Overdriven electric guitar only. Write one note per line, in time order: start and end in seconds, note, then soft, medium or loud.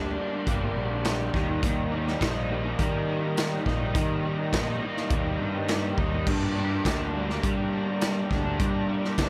0.00 0.76 G2 medium
0.00 0.46 G3 medium
0.00 0.18 A#3 medium
0.00 1.34 D4 medium
0.18 2.49 A#3 medium
0.47 1.05 G3 medium
0.76 1.33 D3 medium
1.05 1.91 G3 medium
1.34 1.62 D#3 medium
1.62 3.07 D#3 medium
1.92 2.78 G3 medium
2.20 3.65 D#4 medium
2.49 4.81 A#3 medium
2.79 3.36 G3 medium
3.08 3.94 D#3 medium
3.37 4.23 G3 medium
3.66 4.52 D#4 medium
3.95 5.39 D#3 medium
4.24 5.11 G3 medium
4.53 5.96 D#4 medium
4.82 7.14 A#3 medium
5.11 5.68 G3 medium
5.40 6.27 D#3 medium
5.68 6.56 G3 medium
5.98 6.27 D#4 medium
6.26 7.72 G2 medium
6.56 7.43 G3 medium
6.85 8.29 D4 medium
7.15 9.29 A#3 medium
7.43 8.01 G3 medium
7.72 9.18 D3 medium
8.01 8.88 G3 medium
8.30 9.16 D4 medium
8.60 9.29 G2 medium
8.89 9.29 G3 medium
9.18 9.29 D4 medium